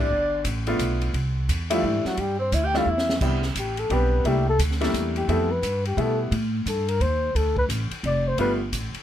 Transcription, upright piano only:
0.67 1.12 A3 medium
0.67 1.12 B3 medium
0.67 1.12 D4 medium
0.67 1.12 F4 medium
1.70 2.15 G3 medium
1.70 2.15 A3 medium
1.70 2.15 D4 medium
1.70 2.15 E4 medium
2.74 2.86 G3 medium
2.74 2.86 A3 medium
2.74 2.86 D4 medium
2.74 2.86 E4 medium
3.22 3.41 G3 medium
3.22 3.41 B3 soft
3.22 3.41 C4 medium
3.22 3.41 D4 soft
3.22 3.41 E4 medium
3.91 4.24 G3 medium
3.91 4.25 B3 medium
3.91 4.25 C4 medium
3.91 4.24 D4 medium
3.91 4.25 G4 medium
4.25 4.44 G3 medium
4.25 4.44 A3 medium
4.25 4.44 A#3 medium
4.25 4.44 D4 medium
4.25 4.45 E4 medium
4.81 5.26 G3 medium
4.81 5.26 A3 medium
4.81 5.26 A#3 medium
4.81 5.26 D4 medium
4.81 5.26 E4 medium
5.28 5.48 G3 medium
5.28 5.48 A3 medium
5.28 5.48 B3 medium
5.28 5.48 C4 medium
5.28 5.48 E4 medium
5.97 6.32 G3 medium
5.97 6.32 A3 medium
5.97 6.32 B3 soft
5.97 6.32 E4 medium
8.38 8.58 G3 medium
8.38 8.58 A3 medium
8.38 8.58 B3 medium
8.38 8.58 D4 soft
8.38 8.58 F4 medium

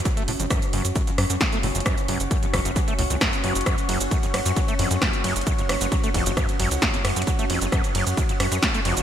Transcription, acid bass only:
0.05 0.09 F#3 medium
0.17 0.23 A3 medium
0.28 0.32 A2 loud
0.40 0.46 F2 medium
0.50 0.60 F#2 loud
0.73 0.83 F#2 loud
0.96 1.02 F#2 medium
1.07 1.11 F2 medium
1.18 1.25 F#2 medium
1.30 1.36 F#2 medium
1.41 1.45 F#3 medium
1.52 1.58 A3 medium
1.63 1.67 A2 loud
1.75 1.81 F2 medium
1.86 1.96 F#2 loud
2.08 2.18 F#2 loud
2.31 2.37 F#2 medium
2.43 2.46 F2 medium
2.54 2.60 F#2 medium
2.65 2.71 F#2 medium
2.76 2.80 F#3 medium
2.88 2.94 A3 medium
2.99 3.02 A2 loud
3.10 3.16 F2 medium
3.21 3.31 F#2 loud
3.44 3.53 F#2 loud
3.66 3.76 F#2 loud
3.89 3.99 F#2 loud
4.11 4.18 F#2 medium
4.23 4.27 F2 medium
4.34 4.40 F#2 medium
4.46 4.52 F#2 medium
4.56 4.60 F#3 medium
4.68 4.74 A3 medium
4.79 4.89 F2 loud
4.91 4.97 F2 medium
5.02 5.11 F#2 loud
5.24 5.34 F#2 loud
5.47 5.53 F#2 medium
5.58 5.62 F2 medium
5.69 5.76 F#2 medium
5.81 5.87 F#2 medium
5.92 5.96 F#3 medium
6.04 6.10 A3 medium
6.14 6.24 F2 loud
6.26 6.32 F2 medium
6.37 6.47 F#2 loud
6.59 6.69 F#2 loud
6.82 6.89 F#2 medium
6.94 6.97 F2 medium
7.05 7.11 F#2 medium
7.16 7.22 F#2 medium
7.27 7.31 F#3 medium
7.39 7.45 A3 medium
7.50 7.59 F2 loud
7.61 7.67 F2 medium
7.72 7.82 F#2 loud
7.95 8.05 F#2 loud
8.17 8.24 F#2 medium
8.29 8.33 F2 medium
8.40 8.46 F#2 medium
8.52 8.58 F#2 medium
8.63 8.66 F#3 medium
8.74 8.80 A3 medium
8.85 8.95 F2 loud
8.97 9.03 F2 medium

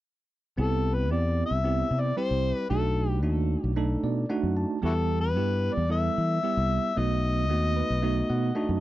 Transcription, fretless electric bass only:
0.58 1.11 C2 medium
1.11 1.42 E2 medium
1.51 1.82 C2 medium
1.91 2.11 C3 medium
2.31 2.51 C2 medium
2.71 3.24 B1 medium
3.24 3.55 D#2 medium
3.64 3.95 B1 medium
4.03 4.24 B2 medium
4.43 4.64 F#2 medium
4.83 5.37 E2 medium
5.37 5.68 G2 medium
5.77 6.08 E2 medium
6.18 6.38 E3 medium
6.57 6.78 C2 medium
6.97 7.50 B1 medium
7.50 7.81 D#2 medium
7.90 8.21 B1 medium
8.30 8.50 B2 medium
8.69 8.80 F#2 medium

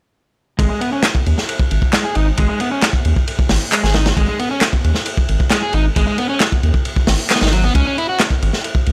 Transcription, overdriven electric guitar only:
0.59 0.69 G#3 medium
0.70 0.79 G#3 medium
0.81 0.90 B3 medium
0.92 1.01 C#4 medium
1.93 2.02 G#3 loud
2.04 2.14 G#4 medium
2.15 2.26 D#4 medium
2.38 2.48 G#3 medium
2.49 2.58 G#3 medium
2.60 2.69 B3 medium
2.71 2.80 C#4 medium
3.72 3.81 G#3 loud
3.83 3.93 G#4 medium
3.94 4.05 D#4 medium
4.17 4.28 G#3 medium
4.29 4.37 G#3 medium
4.39 4.48 B3 medium
4.51 4.59 C#4 medium
5.51 5.60 G#3 loud
5.63 5.73 G#4 medium
5.74 5.84 D#4 medium
5.96 6.06 G#3 medium
6.07 6.16 G#3 medium
6.18 6.27 B3 medium
6.29 6.38 C#4 medium
7.30 7.39 B3 loud
7.41 7.50 D#4 loud
7.52 7.63 F#3 medium
7.64 7.75 B3 medium
7.75 7.86 C#4 medium
7.87 7.95 C#4 medium
7.98 8.06 E4 medium
8.09 8.18 F#4 medium

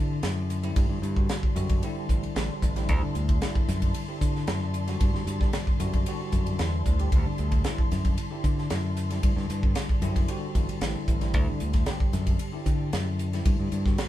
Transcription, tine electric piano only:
0.00 0.58 D3 medium
0.00 0.59 C4 medium
0.00 0.59 E4 medium
0.00 0.58 G4 medium
0.63 1.13 D3 medium
0.63 1.13 G3 medium
0.63 1.14 C4 medium
0.63 1.14 E4 medium
1.15 1.53 D3 medium
1.15 1.53 G3 medium
1.15 1.54 C4 medium
1.15 1.54 F#4 medium
1.55 1.81 D3 medium
1.55 1.81 G3 medium
1.55 1.81 C4 medium
1.55 1.81 F#4 medium
1.82 2.32 D3 medium
1.82 2.33 G3 medium
1.82 2.33 C4 medium
1.82 2.33 E4 loud
2.35 2.73 D3 medium
2.35 2.73 G3 medium
2.35 2.74 C4 medium
2.35 2.74 D4 medium
2.76 3.38 D3 medium
2.76 3.38 G3 medium
2.76 3.38 C4 medium
2.76 3.39 E4 medium
3.41 4.04 D3 medium
3.41 4.04 G3 medium
3.41 4.05 C4 medium
3.41 4.05 E4 medium
4.08 4.82 D3 medium
4.08 4.83 C4 medium
4.08 4.83 E4 medium
4.08 4.83 G4 medium
4.87 5.37 D3 medium
4.87 5.37 G3 medium
4.87 5.38 C4 medium
4.87 5.38 F#4 medium
5.40 5.77 D3 medium
5.40 5.77 G3 medium
5.40 5.78 C4 medium
5.40 5.78 D4 medium
5.79 6.04 D3 medium
5.79 6.05 G3 medium
5.79 6.05 C4 medium
5.79 6.05 F#4 medium
6.06 6.56 D3 medium
6.06 6.56 G3 medium
6.06 6.57 C4 medium
6.06 6.57 F#4 loud
6.58 6.96 D3 medium
6.58 6.97 G3 medium
6.58 6.97 C4 medium
6.58 6.97 E4 medium
6.99 7.61 D3 medium
6.99 7.61 G3 medium
6.99 7.61 C4 medium
6.99 7.62 G4 medium
7.64 8.27 D3 medium
7.64 8.27 G3 medium
7.64 8.27 C4 medium
7.64 8.28 E4 medium
8.31 9.05 D3 medium
8.31 9.06 C4 medium
8.31 9.06 E4 medium
8.31 9.05 G4 medium
9.10 9.59 D3 medium
9.10 9.60 G3 medium
9.10 9.60 C4 medium
9.10 9.61 E4 medium
9.62 10.00 D3 medium
9.62 10.00 G3 medium
9.62 10.00 C4 medium
9.62 10.01 D4 medium
10.02 10.27 D3 medium
10.02 10.27 G3 medium
10.02 10.28 C4 medium
10.02 10.28 E4 medium
10.28 10.78 D3 medium
10.28 10.78 G3 medium
10.28 10.79 C4 medium
10.28 10.79 F#4 medium
10.80 11.18 D3 medium
10.80 11.19 G3 medium
10.80 11.19 C4 medium
10.80 11.19 E4 medium
11.21 11.83 D3 medium
11.21 11.83 G3 medium
11.21 11.84 C4 medium
11.21 11.84 E4 medium
11.87 12.49 D3 medium
11.87 12.49 G3 medium
11.87 12.50 C4 medium
11.87 12.50 G4 medium
12.52 13.27 D3 medium
12.52 13.28 C4 medium
12.52 13.28 E4 medium
12.52 13.28 G4 medium
13.33 13.82 D3 medium
13.33 13.83 G3 medium
13.33 13.83 C4 medium
13.33 13.83 E4 medium
13.85 14.08 D3 medium
13.85 14.08 G3 medium
13.85 14.08 C4 medium
13.85 14.08 F#4 medium

